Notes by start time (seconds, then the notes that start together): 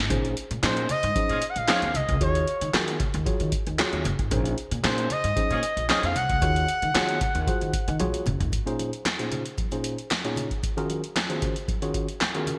0.10 A#1 C#4 D#4 G#4 C5, kick, closed hi-hat, muted conga, low conga
0.25 closed hi-hat
0.37 closed hi-hat
0.51 A#2, closed hi-hat
0.63 A#2 C#4 D#4 G#4 C5 D#5, snare, clap, closed hi-hat, high conga
0.76 closed hi-hat, muted conga
0.89 D#5, closed hi-hat, low conga
1.03 G#2, closed hi-hat
1.15 C#4 D#4 G#4 C5, muted upright bass stroke, kick, closed hi-hat, muted conga, high conga
1.29 A#2 F4 G#4 C#5, closed hi-hat, muted conga
1.42 closed hi-hat
1.49 F#5
1.56 A#1 F5, closed hi-hat
1.68 C#4 D#4 F4 G#4 C5 C#5, snare, clap, closed hi-hat, high conga
1.82 D#2, closed hi-hat, muted conga
1.94 C2 D#5, closed hi-hat, low conga
2.09 C#2, kick, closed hi-hat
2.20 D#2 F4 F#4 G#4 C#5, kick, closed hi-hat, muted conga, low conga
2.35 closed hi-hat
2.48 closed hi-hat
2.61 D#3, closed hi-hat
2.73 F4 F#4 G#4 A#4, snare, clap, closed hi-hat, muted conga, high conga
2.88 closed hi-hat
3.00 kick, closed hi-hat, low conga
3.14 D#2, closed hi-hat
3.26 F4 F#4 G#4 C#5, muted upright bass stroke, kick, closed hi-hat, high conga
3.40 D#3, closed hi-hat
3.52 kick, closed hi-hat
3.67 D#2, closed hi-hat
3.78 F4 F#4 G#4 C#5, snare, clap, closed hi-hat, muted conga, high conga
3.93 D#2, closed hi-hat, muted conga
4.05 F#1, closed hi-hat, low conga
4.19 G#1, kick, closed hi-hat
4.31 A#1 C#4 D#4 G#4 C5, kick, closed hi-hat, low conga
4.45 closed hi-hat
4.58 closed hi-hat
4.71 A#2, closed hi-hat
4.83 A#2 C#4 D#4 G#4 C5, snare, clap, closed hi-hat, muted conga, high conga
4.98 closed hi-hat
5.10 D#5, closed hi-hat, low conga
5.24 G#2, closed hi-hat
5.36 C#4 D#4 G#4 C5, muted upright bass stroke, kick, closed hi-hat, high conga
5.50 A#2 F4 G#4 C#5, closed hi-hat, muted conga
5.63 closed hi-hat
5.77 A#1, closed hi-hat
5.89 C#4 D#4 F4 G#4 C5 C#5 D#5, snare, clap, closed hi-hat, muted conga, high conga
6.03 F2 F5, closed hi-hat, muted conga
6.15 C2 F#5, closed hi-hat, low conga
6.30 C#2, kick, closed hi-hat
6.42 D#2 F4 F#4 G#4 C#5, kick, closed hi-hat, muted conga, low conga
6.56 closed hi-hat
6.68 closed hi-hat
6.82 D#3, closed hi-hat
6.94 D#3 F4 F#4 G#4 C#5, snare, clap, closed hi-hat, high conga
7.09 closed hi-hat
7.21 kick, closed hi-hat, low conga
7.35 D#2, closed hi-hat
7.47 F4 F#4 G#4 C5, kick, closed hi-hat, high conga
7.61 D#3, closed hi-hat
7.73 kick, closed hi-hat
7.88 D#3, closed hi-hat
8.00 A#1 F4 F#4 G#4 C#5, closed hi-hat, high tom, muted conga, high conga
8.14 closed hi-hat, muted conga
8.26 F#1, closed hi-hat, mid tom, low conga
8.40 G#1, closed hi-hat, floor tom
8.52 kick, closed hi-hat, muted conga
8.66 A#2 C#4 D#4 F4 G#4 C5, closed hi-hat, muted conga
8.79 closed hi-hat, high conga
8.93 closed hi-hat
9.05 snare, clap, closed hi-hat, muted conga, high conga
9.19 A#2 C#4 D#4 F4 G#4 C5, closed hi-hat, muted conga
9.32 closed hi-hat, low conga
9.46 closed hi-hat
9.58 kick, closed hi-hat, muted conga, high conga
9.71 A#2 C#4 D#4 F4 G#4 C5, closed hi-hat, muted conga
9.84 closed hi-hat
9.98 closed hi-hat
10.10 snare, clap, closed hi-hat, high conga
10.24 A#2 C#4 D#4 F4 G#4 C#5, closed hi-hat, muted conga
10.36 closed hi-hat, low conga
10.51 kick, closed hi-hat
10.63 kick, closed hi-hat, muted conga
10.77 D#3 C#4 F4 F#4 G#4 A#4, closed hi-hat, muted conga
10.90 closed hi-hat, high conga
11.04 closed hi-hat
11.16 snare, clap, closed hi-hat, muted conga, high conga
11.29 D#3 C#4 F4 F#4 G#4 C5, closed hi-hat, muted conga
11.42 kick, closed hi-hat, low conga
11.56 closed hi-hat
11.68 kick, closed hi-hat, high conga
11.82 D#3 C#4 F4 F#4 G#4 C#5, closed hi-hat
11.94 kick, closed hi-hat
12.09 closed hi-hat
12.20 snare, clap, closed hi-hat, muted conga, high conga
12.34 D#3 C#4 F4 F#4 G#4 A#4, closed hi-hat, muted conga
12.47 closed hi-hat, low conga